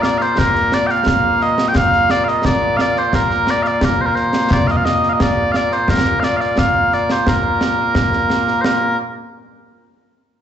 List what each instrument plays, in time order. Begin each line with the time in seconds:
Already playing: bagpipes A#2 A#3
0.02 bagpipes D5 F5, snare
0.18 bagpipes C5 F5, snare
0.38 bagpipes A#4, concert bass drum, snare
0.55 snare
0.72 bagpipes D5, snare
0.87 bagpipes G5, snare
0.91 bagpipes F5
1.06 concert bass drum, snare
1.41 bagpipes D#5, snare
1.58 snare
1.68 bagpipes G5
1.75 bagpipes F5, concert bass drum, snare
1.93 snare
2.10 bagpipes D5, snare
2.24 bagpipes D#5 F5, snare
2.45 bagpipes D5, concert bass drum, snare
2.77 bagpipes F5, snare
2.81 bagpipes D5
2.96 bagpipes C5, snare
3.13 bagpipes A#4, concert bass drum, snare
3.30 snare
3.47 bagpipes D5, snare
3.63 bagpipes F5, snare
3.67 bagpipes D5
3.81 bagpipes A#4, concert bass drum, snare
4.01 bagpipes C5
4.06 bagpipes A#4
4.15 bagpipes C5, snare
4.33 snare
4.50 bagpipes D5, concert bass drum, snare
4.67 bagpipes D#5 F5, snare
4.77 bagpipes F5
4.85 bagpipes D#5, snare
5.03 snare
5.09 bagpipes D#5 F5
5.20 bagpipes D5, concert bass drum, snare
5.52 bagpipes F5, snare
5.56 bagpipes D5
5.71 bagpipes C5, snare
5.88 bagpipes A#4, concert bass drum, snare
6.06 snare
6.20 bagpipes F5, snare
6.24 bagpipes D5
6.37 bagpipes D5 F5, snare
6.58 bagpipes F5, concert bass drum, snare
6.92 bagpipes D5, snare
7.10 bagpipes C5, snare
7.27 bagpipes A#4, concert bass drum, snare
7.61 snare
7.95 concert bass drum, snare
8.13 snare
8.30 snare
8.47 snare
8.61 bagpipes C5, snare
8.65 bagpipes A#4